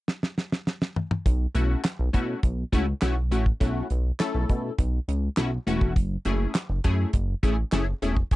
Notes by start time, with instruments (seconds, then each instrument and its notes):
0.08 snare
0.23 snare
0.38 snare
0.52 snare
0.67 snare
0.82 snare
0.96 mid tom
1.11 mid tom
1.26 analog synth bass B1, kick, closed hi-hat
1.55 analog synth bass B1, analog polysynth A3 C#4 E4 F#4, closed hi-hat
1.84 snare, clap, closed hi-hat
1.99 analog synth bass B1
2.13 analog synth bass B2, analog polysynth A3 C#4 E4 F#4, kick, closed hi-hat
2.43 analog synth bass B1, kick, closed hi-hat
2.72 analog synth bass C#2, analog polysynth A3 C#4 E4 F#4, kick, closed hi-hat
3.02 analog synth bass B1, analog polysynth A3 C#4 E4 F#4, snare, clap, closed hi-hat
3.31 analog synth bass A1, analog polysynth A3 C#4 E4 F#4, closed hi-hat
3.46 kick
3.60 analog synth bass B1, analog polysynth A3 C#4 E4 F#4, kick, closed hi-hat
3.90 analog synth bass B1, closed hi-hat
4.19 analog polysynth A3 C#4 E4 A4, snare, clap, closed hi-hat
4.35 analog synth bass B1
4.49 analog synth bass B2, kick, closed hi-hat
4.78 analog synth bass B1, kick, closed hi-hat
5.08 analog synth bass C#2, closed hi-hat
5.37 analog synth bass B1, analog polysynth A3 C#4 E4 F#4, snare, clap, closed hi-hat
5.67 analog synth bass E1, analog polysynth A3 C#4 E4 F#4, closed hi-hat
5.81 kick
5.96 analog synth bass F#1, kick, closed hi-hat
6.25 analog synth bass F#1, analog polysynth A3 C#4 E4 G#4, closed hi-hat
6.55 snare, clap, closed hi-hat
6.70 analog synth bass F#1
6.84 analog synth bass F#2, analog polysynth A3 C#4 E4 G#4, kick, closed hi-hat
7.13 analog synth bass F#1, kick, closed hi-hat
7.43 analog synth bass A1, analog polysynth A3 C#4 E4 G#4, kick, closed hi-hat
7.72 analog synth bass F#1, analog polysynth A3 C#4 E4 G#4, snare, clap, closed hi-hat
8.02 analog synth bass E1, analog polysynth A3 C#4 E4 G#4, closed hi-hat
8.17 kick
8.31 analog synth bass F#1, analog polysynth A3 C#4 E4, kick, closed hi-hat